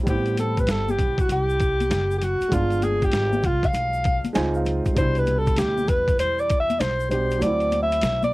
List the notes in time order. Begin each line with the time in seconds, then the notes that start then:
0.03 A1 G3 B3, kick, closed hi-hat, shaker
0.08 C4 E4 G4
0.26 closed hi-hat, shaker
0.37 A4, closed hi-hat, high conga, shaker
0.57 B4, kick, closed hi-hat, shaker
0.67 G1 A4, snare, closed hi-hat, shaker
0.89 G4, high conga, shaker
0.99 B1, kick, closed hi-hat, low conga, shaker
1.18 F#4, kick, closed hi-hat, shaker
1.29 C2 G4, closed hi-hat, low conga, shaker
1.49 shaker
1.60 kick, closed hi-hat, shaker
1.80 closed hi-hat, high conga, shaker
1.90 F#1, snare, closed hi-hat, shaker
2.11 shaker
2.18 G4, closed hi-hat
2.22 F#4, low conga, shaker
2.41 muted upright bass stroke, closed hi-hat, shaker
2.48 G1 G#3 B3, kick, closed hi-hat, shaker
2.53 D4 F4
2.70 closed hi-hat, shaker
2.82 G#4, closed hi-hat, high conga, shaker
3.02 G4, kick, closed hi-hat, shaker
3.12 G#1, snare, closed hi-hat, shaker
3.33 high conga, shaker
3.43 C2 F4, kick, closed hi-hat, low conga, shaker
3.63 F5, kick, closed hi-hat, shaker
3.74 B1, closed hi-hat, low conga, shaker
3.93 shaker
4.04 kick, closed hi-hat, shaker
4.24 muted upright bass stroke, closed hi-hat, high conga, shaker
4.33 C#2 G#3 C4 D#4 F4 G#5, snare, closed hi-hat, shaker
4.54 F5, shaker
4.66 closed hi-hat, low conga, shaker
4.86 muted upright bass stroke, kick, closed hi-hat, shaker
4.93 C2 B2 G3, kick, closed hi-hat, shaker
4.98 D4 E4 C5
5.15 B4, closed hi-hat, shaker
5.27 closed hi-hat, high conga, shaker
5.38 A4
5.47 kick, closed hi-hat, shaker
5.57 D2 G4, snare, closed hi-hat, shaker
5.78 high conga, shaker
5.88 E2 B4, kick, closed hi-hat, low conga, shaker
6.08 kick, closed hi-hat, shaker
6.19 E2 C5, closed hi-hat, low conga, shaker
6.39 D5, shaker
6.50 kick, closed hi-hat, shaker
6.60 E5
6.70 closed hi-hat, high conga, shaker
6.80 B1 C5, snare, closed hi-hat, shaker
7.00 shaker
7.09 B2 G3 D4 G4 C5, closed hi-hat, low conga, shaker
7.31 closed hi-hat, shaker
7.38 D2 F#3 A3 D5, closed hi-hat, shaker
7.43 C4 E4
7.60 closed hi-hat, shaker
7.72 closed hi-hat, high conga, shaker
7.83 E5
7.92 closed hi-hat, shaker
8.01 B1, snare, closed hi-hat, shaker
8.23 D5, closed hi-hat, high conga, shaker